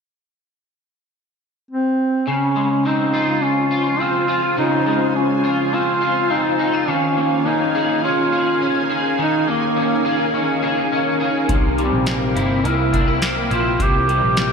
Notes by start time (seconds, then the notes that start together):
1.71 C4
2.27 C#3 C#4 F4 C5 F5 G#5
2.56 G#3
2.85 C4 D#4
3.14 F4
3.43 C#4
3.71 F4
4.00 C4 F4
4.28 F4
4.57 C#3 D#4
4.87 G#3
5.15 C#4
5.44 F4
5.73 C4 F4
6.01 F4
6.30 C4 D#4
6.59 D#4
6.73 F4
6.87 D#3 C#4 D#4 A#4 G#5
7.17 A#3
7.46 C#4 D#4
7.75 G#4
8.04 C#4 F4
8.32 G#4
8.61 C#4
8.90 G#4
9.19 D#3 D#4
9.47 A#3
9.76 C#4
10.05 G#4
10.34 C#4
10.63 G#4
10.92 C#4
11.20 G#4
11.49 C2 C3 E4 C5 G5, kick, closed hi-hat
11.78 G3 C4, closed hi-hat
11.93 A#1
12.06 A#3, snare, closed hi-hat
12.35 G1 E4, closed hi-hat
12.64 C2 A#3 E4, closed hi-hat
12.93 D4, kick, closed hi-hat
13.08 E4
13.22 A#3, snare, closed hi-hat
13.50 A#1 E4 F4, closed hi-hat
13.79 C2 C3 G4, kick, closed hi-hat
14.08 G3, closed hi-hat
14.23 A#1
14.37 A#3 G4, snare, closed hi-hat